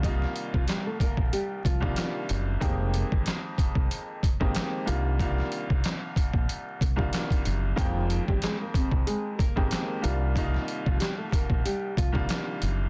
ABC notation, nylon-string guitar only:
X:1
M:4/4
L:1/16
Q:"Swing 16ths" 1/4=93
K:Cm
V:1 name="Nylon-string guitar"
[Ee]3 [F,F] [G,G] [=A,=A] [B,B]2 [G,G]2 [F,F]2 z4 | z16 | z16 | [F,F]3 [G,G] [A,A] [B,B] [Cc]2 [A,A]2 [B,B]6 |
[Ee]3 [F,F] [G,G] [=A,=A] [B,B]2 [G,G]2 [F,F]2 z4 |]